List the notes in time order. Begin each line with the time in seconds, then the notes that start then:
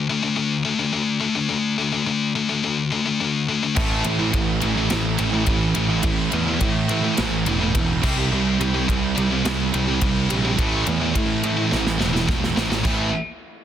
0.10 D3 A3
0.23 D3 A3
0.36 D3 A3
0.65 D3 A3
0.79 D3 A3
0.93 D3 A3
1.21 D3 A3
1.35 D3 A3
1.49 D3 A3
1.78 D3 A3
1.93 D3 A3
2.06 D3 A3
2.35 D3 A3
2.49 D3 A3
2.64 D3 A3
2.92 D3 A3
3.06 D3 A3
3.20 D3 A3
3.49 D3 A3
3.63 D3 A3
3.75 A1 A2 E3 A3 C4, kick, crash
3.79 E4
4.04 A1 A2 E3, ride
4.19 A2 E3
4.33 A1 A2 E3, kick, ride
4.62 A1 A2 E3 A3 C4 E4, ride
4.77 A2 E3
4.90 A1 A2 E3, snare, ride
5.19 A1 A2 E3, ride
5.34 A2 E3
5.46 A1 A2 E3, kick, ride
5.75 A1 A2 E3, ride
5.90 A2 E3
6.03 A1 A2 E3 A3 C4 E4, kick, ride
6.32 E2 A2 E3, ride
6.48 A2 E3
6.61 A2 E3, kick, ride
6.89 A2 E3 A3 C4 E4, ride
7.04 A2 E3
7.17 A1 A2 E3, snare, ride
7.46 E1 A2 E3, ride
7.61 A2 E3
7.75 E1 A2 E3, kick, ride
8.02 C2 C3 E3 G3 C4 E4, kick, crash
8.18 C3 G3
8.31 C2 C3 G3
8.59 C2 C3 G3, ride
8.74 C3 G3
8.87 C2 C3 E3 G3 C4 E4, kick, ride
9.16 C2 C3 G3, ride
9.31 C3 G3
9.45 C2 C3 G3, snare, ride
9.74 C2 C3 G3, ride
9.88 C3 G3
10.01 C2 C3 G3, kick, ride
10.30 A#1 C3 G3, ride
10.45 C3 G3
10.56 A1 A2 E3 A3 C4, kick, ride
10.61 E4
10.87 E2 A2 E3, ride
11.02 A2 E3
11.15 A2 E3, kick, ride
11.43 A2 E3 A3 C4 E4, ride
11.47 A2
11.57 A2 E3
11.71 A1 A2 E3, snare
11.87 snare
11.99 E1 A2 E3, snare
12.13 A2 E3, snare
12.28 E1 A2 E3, kick, snare
12.44 snare
12.56 A1 A2 E3, snare
12.70 A2 E3, snare
12.84 A1 A2 E3 A3 C4 E4, kick, crash